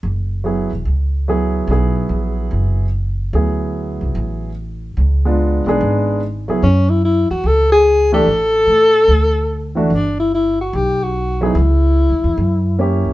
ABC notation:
X:1
M:4/4
L:1/8
Q:"Swing" 1/4=146
K:F#m
V:1 name="Alto saxophone"
z8 | z8 | z8 | z8 |
C E E F A G2 A- | A6- A z | D E E F =G F2 E- | E6- E z |]
V:2 name="Grand piano"
z2 [F,B,EG] z3 [F,B,EG]2 | [F,B,EG]4- [F,B,EG] z3 | [F,B,EG]4- [F,B,EG] z3 | z [G,B,D^E]2 [G,B,DG]3 z [F,B,=EG] |
z6 z [E,A,D=G] | z6 z [E,A,DF] | z6 z [F,B,EG] | z6 [^A,CE=G]2 |]
V:3 name="Upright bass" clef=bass
F,,,3 E,,, C,,4 | B,,,2 ^A,,,2 F,,,4 | D,,3 =C,, A,,,4 | C,,3 B,,, G,,,3 C,, |
F,,3 E,, C,,4 | A,,,2 A,,2 D,,4 | =G,,,4 B,,,4 | C,,2- (3C,, ^D,, E,, F,,3 C,, |]